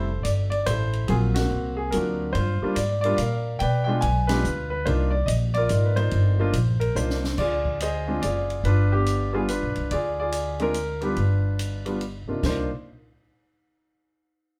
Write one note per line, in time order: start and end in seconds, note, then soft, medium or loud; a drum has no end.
0.00 0.23 F1 medium
0.00 0.49 A4 medium
0.00 0.21 C5 medium
0.23 0.65 G1 medium
0.23 0.29 D5 medium
0.23 hi-hat pedal medium
0.23 ride medium
0.50 0.65 D5 medium
0.50 ride soft
0.66 1.07 A1 medium
0.66 1.08 E4 medium
0.66 1.08 A4 medium
0.66 1.10 C5 medium
0.66 hi-hat pedal soft
0.66 ride medium
0.93 ride soft
1.08 1.50 A#1 medium
1.08 1.33 F#3 medium
1.08 1.33 A#3 soft
1.08 1.34 C4 medium
1.08 1.34 F4 medium
1.08 1.14 G#4 medium
1.08 ride medium
1.34 1.78 F#4 medium
1.34 snare medium
1.34 ride medium
1.39 1.90 A#3 medium
1.39 1.90 C4 soft
1.51 1.92 C2 medium
1.77 1.93 G#4 medium
1.91 2.34 D2 medium
1.91 2.35 F#3 soft
1.91 2.35 A#3 soft
1.91 2.35 C4 soft
1.91 2.31 A#4 medium
1.91 hi-hat pedal soft
1.91 ride medium
1.95 2.36 D4 soft
1.95 2.33 F4 medium
1.95 2.33 F#4 medium
2.33 2.60 G2 medium
2.33 2.77 C5 medium
2.33 ride medium
2.37 2.62 F4 medium
2.62 2.75 G3 medium
2.62 2.76 A#3 medium
2.62 2.76 D4 medium
2.62 2.76 F4 medium
2.62 muted upright bass stroke soft
2.75 3.17 G#2 medium
2.75 3.00 D5 medium
2.75 hi-hat pedal medium
2.75 ride medium
3.01 3.17 G3 medium
3.01 3.18 A#3 medium
3.01 3.16 D5 medium
3.01 ride soft
3.05 3.18 D4 medium
3.05 3.18 F4 medium
3.17 3.59 A#2 medium
3.17 3.58 A#4 medium
3.17 3.58 D5 medium
3.17 3.61 F5 medium
3.17 hi-hat pedal soft
3.17 ride medium
3.59 4.02 B2 medium
3.59 4.26 B4 medium
3.59 4.26 D5 medium
3.59 3.83 G5 loud
3.59 ride medium
3.84 4.01 G#3 medium
3.84 4.01 B3 medium
3.84 4.01 D4 medium
3.84 4.00 G5 medium
3.89 4.02 F4 medium
4.01 4.43 B1 medium
4.01 4.30 G#5 loud
4.01 ride medium
4.27 4.42 G#3 medium
4.27 4.43 B3 medium
4.27 4.43 D4 medium
4.27 4.43 G4 medium
4.27 4.69 B4 medium
4.27 snare medium
4.27 ride medium
4.31 4.83 F4 medium
4.44 4.85 D2 medium
4.44 hi-hat pedal medium
4.70 4.85 B4 medium
4.86 5.27 C2 medium
4.86 5.11 A#3 medium
4.86 5.11 D4 medium
4.86 5.11 D#4 medium
4.86 5.12 F4 medium
4.86 4.92 C5 medium
4.86 ride soft
5.10 5.27 D5 medium
5.26 5.69 A#1 medium
5.26 5.32 D#5 medium
5.26 hi-hat pedal medium
5.26 ride medium
5.54 5.70 F4 medium
5.54 6.10 A#4 medium
5.54 5.69 D5 loud
5.54 ride soft
5.69 6.11 G#1 medium
5.69 6.34 A#3 medium
5.69 5.98 D#4 medium
5.69 5.98 F4 medium
5.69 6.34 D5 medium
5.69 hi-hat pedal medium
5.69 ride medium
5.85 5.98 B4 medium
5.96 6.39 D#4 medium
5.96 6.39 F4 medium
5.96 6.92 C5 medium
5.96 ride soft
6.11 6.53 G1 medium
6.11 ride soft
6.39 6.53 A#3 medium
6.39 6.53 D4 medium
6.39 6.53 D#4 medium
6.39 6.54 F4 medium
6.53 6.95 A#1 medium
6.53 hi-hat pedal medium
6.53 ride medium
6.80 6.96 A#4 medium
6.80 ride soft
6.95 7.37 C2 medium
6.95 7.21 A#3 medium
6.95 7.21 D4 soft
6.95 7.21 D#4 soft
6.95 7.22 F4 medium
6.95 7.40 C5 medium
6.95 hi-hat pedal medium
7.10 snare soft
7.24 snare medium
7.38 8.18 D2 medium
7.38 8.04 F4 medium
7.38 7.81 G#4 medium
7.38 7.82 D5 loud
7.38 kick medium
7.38 crash medium
7.65 kick soft
7.80 8.22 G#4 medium
7.80 8.47 C5 medium
7.80 8.20 D#5 medium
7.80 hi-hat pedal soft
7.80 ride medium
8.07 8.21 G#3 medium
8.07 8.21 C4 soft
8.07 8.21 D4 medium
8.07 8.22 F4 medium
8.22 8.61 F#1 medium
8.22 8.62 F4 medium
8.22 8.62 G#4 medium
8.22 8.66 D5 medium
8.22 hi-hat pedal medium
8.22 ride medium
8.50 ride soft
8.64 9.58 G1 medium
8.64 8.93 D4 medium
8.64 9.31 F4 medium
8.64 8.93 B4 medium
8.64 ride soft
8.92 9.32 B3 medium
8.92 9.32 D4 soft
8.92 9.31 G4 medium
9.06 hi-hat pedal medium
9.06 ride medium
9.33 9.47 G3 medium
9.33 9.47 B3 medium
9.33 9.47 D4 medium
9.33 9.48 F4 medium
9.33 9.39 G#4 medium
9.48 9.89 D4 medium
9.48 9.89 F4 medium
9.48 9.92 B4 medium
9.48 hi-hat pedal medium
9.48 ride medium
9.63 9.76 B1 soft
9.76 9.90 C2 medium
9.76 ride soft
9.91 11.13 D2 medium
9.91 10.20 F4 medium
9.91 10.19 G#4 medium
9.91 10.16 D5 medium
9.91 ride soft
10.20 10.60 F4 medium
10.20 10.73 G#4 medium
10.20 10.58 D5 medium
10.32 hi-hat pedal medium
10.32 ride medium
10.59 10.73 G#3 medium
10.59 10.73 C4 medium
10.59 10.74 D4 medium
10.59 10.74 F4 medium
10.59 11.04 A#4 loud
10.59 ride soft
10.74 hi-hat pedal soft
10.74 ride medium
11.01 11.15 G3 medium
11.01 11.15 B3 medium
11.01 11.04 D4 medium
11.01 11.16 G4 medium
11.01 ride soft
11.05 11.85 D4 medium
11.05 11.86 F4 medium
11.05 11.99 B4 medium
11.16 12.24 G1 medium
11.16 ride soft
11.59 hi-hat pedal medium
11.59 ride medium
11.85 11.99 G3 medium
11.85 11.99 B3 medium
11.85 12.00 D4 soft
11.85 12.00 F4 medium
11.85 ride soft
12.01 ride soft
12.28 12.41 C3 soft
12.28 12.42 A#3 soft
12.28 12.42 D4 soft
12.28 12.42 D#4 soft
12.28 12.42 F4 medium
12.28 muted upright bass stroke soft
12.43 12.68 C2 medium
12.43 12.68 A#3 medium
12.43 12.68 D4 medium
12.43 12.68 D#4 medium
12.43 12.69 F4 medium
12.43 12.70 C5 medium
12.43 kick medium
12.43 snare medium
12.43 crash medium